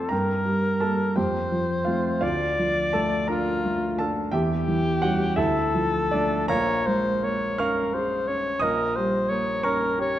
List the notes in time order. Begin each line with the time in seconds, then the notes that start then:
Already playing: F3 A3 C4 F4 A4 C5 D5 C6 D6
0.09 G2 A#4 G5 A#5
0.45 G3
0.81 G3 A#3 A4 A5
1.16 F2 G4 C5 G5
1.52 F3
1.85 A3 C4 F4 F5
2.21 D2 F4 D5 F5
2.59 F3
2.93 A3 A4 A5
3.28 D4 F4 A#4 A#5
3.65 A3
3.99 D4 A4 A5
4.32 E2 G4 E5 G5
4.68 E3
5.02 G3 C#4 F#4 F#5
5.36 D2 E4 A4 E5
5.74 F3
6.11 A3 D4 D5
6.48 A#1 A#4 C#5 F5 A#5
6.86 G#3 C5
7.22 A#3 C#5
7.58 C#4 A#4 F5 C#6 F6
7.94 G#4 C5
8.27 C#4 C#5
8.60 A#1 A#4 D#5 D#6
8.96 G3 C5
9.29 A#3 C#5
9.63 C#4 A#4 C#5 A#5 C#6
9.98 G4 C#5